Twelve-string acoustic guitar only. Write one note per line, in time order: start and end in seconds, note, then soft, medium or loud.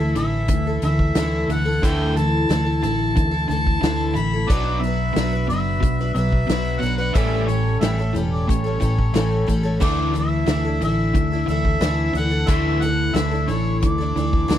0.00 0.15 A3 soft
0.00 0.16 E4 soft
0.00 0.16 A4 soft
0.16 0.66 E3 medium
0.16 0.66 A3 medium
0.16 0.67 E4 medium
0.16 0.66 A4 medium
0.67 0.82 A3 soft
0.67 0.83 E4 soft
0.67 0.83 A4 soft
0.83 1.15 E3 medium
0.83 1.16 A3 medium
0.83 1.17 E4 medium
0.83 1.17 A4 medium
1.16 1.50 D3 medium
1.16 1.49 E3 medium
1.16 1.49 A3 medium
1.16 1.50 E4 medium
1.16 1.51 A4 medium
1.50 1.66 E3 medium
1.50 1.66 A3 medium
1.50 1.66 E4 medium
1.50 1.64 A4 medium
1.66 1.83 A3 soft
1.66 1.83 E4 soft
1.66 1.82 A4 medium
1.83 2.16 D3 medium
1.83 2.15 E3 medium
1.83 2.16 A3 medium
1.83 2.17 E4 medium
1.83 2.17 A4 medium
2.16 2.48 E3 medium
2.16 2.49 A3 medium
2.16 2.49 E4 medium
2.16 2.50 A4 medium
2.49 2.66 D3 medium
2.49 2.66 E3 medium
2.49 2.67 A3 medium
2.49 2.65 E4 medium
2.49 2.64 A4 medium
2.65 2.82 A3 soft
2.65 2.83 E4 soft
2.65 2.82 A4 medium
2.82 3.32 E3 medium
2.82 3.33 A3 medium
2.82 3.32 E4 medium
2.82 3.30 A4 medium
3.31 3.48 A3 soft
3.31 3.50 E4 soft
3.31 3.49 A4 soft
3.48 3.82 E3 medium
3.48 3.82 A3 medium
3.48 3.83 E4 medium
3.48 3.83 A4 medium
3.83 4.16 D3 medium
3.83 4.14 E3 medium
3.83 4.15 A3 medium
3.83 4.15 E4 medium
3.83 4.17 A4 medium
4.15 4.32 E3 medium
4.15 4.33 A3 medium
4.15 4.33 E4 medium
4.15 4.32 A4 medium
4.33 4.50 A3 soft
4.33 4.51 E4 soft
4.33 4.50 A4 medium
4.50 4.83 B2 medium
4.50 4.83 F#3 medium
4.50 4.83 D4 medium
4.50 4.84 F#4 medium
4.50 4.84 B4 medium
4.84 5.16 F#3 medium
4.84 5.16 D4 medium
4.84 5.17 F#4 medium
4.84 5.18 B4 medium
5.16 5.33 B2 medium
5.16 5.33 F#3 medium
5.16 5.33 D4 medium
5.16 5.34 F#4 medium
5.16 5.31 B4 medium
5.33 5.50 D4 soft
5.33 5.50 F#4 medium
5.33 5.49 B4 medium
5.51 6.00 F#3 medium
5.51 6.00 D4 medium
5.51 6.01 F#4 medium
5.51 5.99 B4 medium
6.01 6.16 D4 soft
6.01 6.17 F#4 soft
6.01 6.17 B4 medium
6.15 6.49 F#3 medium
6.15 6.49 D4 medium
6.15 6.49 F#4 medium
6.15 6.51 B4 medium
6.49 6.83 B2 medium
6.49 6.81 F#3 medium
6.49 6.83 D4 medium
6.49 6.83 F#4 medium
6.49 6.84 B4 medium
6.82 6.99 F#3 medium
6.82 7.00 D4 medium
6.82 6.98 F#4 medium
6.86 6.97 B4 medium
6.98 7.16 D4 soft
6.98 7.16 F#4 medium
6.98 7.15 B4 medium
7.15 7.49 A2 medium
7.15 7.49 E3 medium
7.15 7.47 G3 medium
7.15 7.48 A3 medium
7.15 7.49 C#4 medium
7.15 7.50 A4 medium
7.48 7.81 G3 medium
7.48 7.81 A3 medium
7.48 7.82 C#4 medium
7.48 7.82 A4 medium
7.81 7.99 A2 medium
7.81 7.99 E3 medium
7.81 7.99 G3 medium
7.81 7.99 A3 medium
7.81 7.99 C#4 medium
7.81 7.97 A4 medium
7.99 8.13 G3 soft
7.99 8.15 A3 soft
7.99 8.15 C#4 soft
7.99 8.16 A4 soft
8.15 8.65 G3 medium
8.15 8.66 A3 medium
8.15 8.65 C#4 medium
8.15 8.63 A4 medium
8.64 8.79 G3 soft
8.64 8.80 A3 soft
8.64 8.80 C#4 soft
8.64 8.82 A4 soft
8.80 9.14 G3 medium
8.80 9.15 A3 medium
8.80 9.15 C#4 medium
8.80 9.15 A4 medium
9.14 9.48 A2 medium
9.14 9.49 E3 medium
9.14 9.45 G3 medium
9.14 9.46 A3 medium
9.14 9.47 C#4 medium
9.14 9.49 A4 medium
9.47 9.65 G3 medium
9.47 9.64 A3 medium
9.47 9.64 C#4 medium
9.47 9.62 A4 medium
9.63 9.80 G3 medium
9.63 9.81 A3 soft
9.63 9.81 C#4 medium
9.63 9.80 A4 medium
9.80 10.15 D3 medium
9.80 10.12 E3 medium
9.80 10.14 D4 medium
9.80 10.14 E4 medium
9.80 10.15 A4 medium
10.13 10.47 E3 medium
10.13 10.47 D4 medium
10.13 10.48 E4 medium
10.13 10.48 A4 medium
10.46 10.65 D3 medium
10.46 10.66 E3 medium
10.46 10.66 D4 medium
10.46 10.66 E4 medium
10.46 10.63 A4 medium
10.65 10.82 D4 soft
10.65 10.83 E4 soft
10.65 10.82 A4 soft
10.81 11.32 E3 medium
10.81 11.33 D4 medium
10.81 11.32 E4 medium
10.81 11.31 A4 medium
11.32 11.49 D4 soft
11.32 11.49 E4 soft
11.32 11.49 A4 soft
11.48 11.80 E3 soft
11.48 11.81 D4 medium
11.48 11.81 E4 medium
11.48 11.82 A4 medium
11.81 12.15 D3 medium
11.81 12.14 E3 medium
11.81 12.15 D4 medium
11.81 12.16 E4 medium
11.81 12.16 A4 medium
12.15 12.33 E3 medium
12.15 12.33 D4 medium
12.15 12.31 E4 medium
12.15 12.29 A4 medium
12.31 12.47 D4 soft
12.31 12.48 E4 soft
12.31 12.49 A4 medium
12.47 12.82 D3 medium
12.47 12.80 E3 medium
12.47 12.82 D4 medium
12.47 12.82 E4 medium
12.47 12.83 A4 medium
12.82 13.13 E3 soft
12.82 13.14 D4 medium
12.82 13.15 E4 medium
12.82 13.15 A4 medium
13.14 13.32 D3 medium
13.14 13.32 E3 medium
13.14 13.33 D4 medium
13.14 13.31 E4 medium
13.14 13.30 A4 medium
13.31 13.48 D4 soft
13.31 13.49 E4 soft
13.31 13.49 A4 soft
13.48 13.99 E3 medium
13.48 14.00 D4 medium
13.48 13.99 E4 medium
13.48 13.97 A4 medium
13.98 14.16 D4 soft
13.98 14.17 E4 soft
13.98 14.16 A4 soft
14.16 14.48 E3 medium
14.16 14.49 D4 medium
14.16 14.49 E4 medium
14.16 14.49 A4 medium
14.48 14.59 D3 medium
14.48 14.59 E3 medium
14.48 14.59 D4 medium
14.48 14.59 E4 medium
14.48 14.59 A4 medium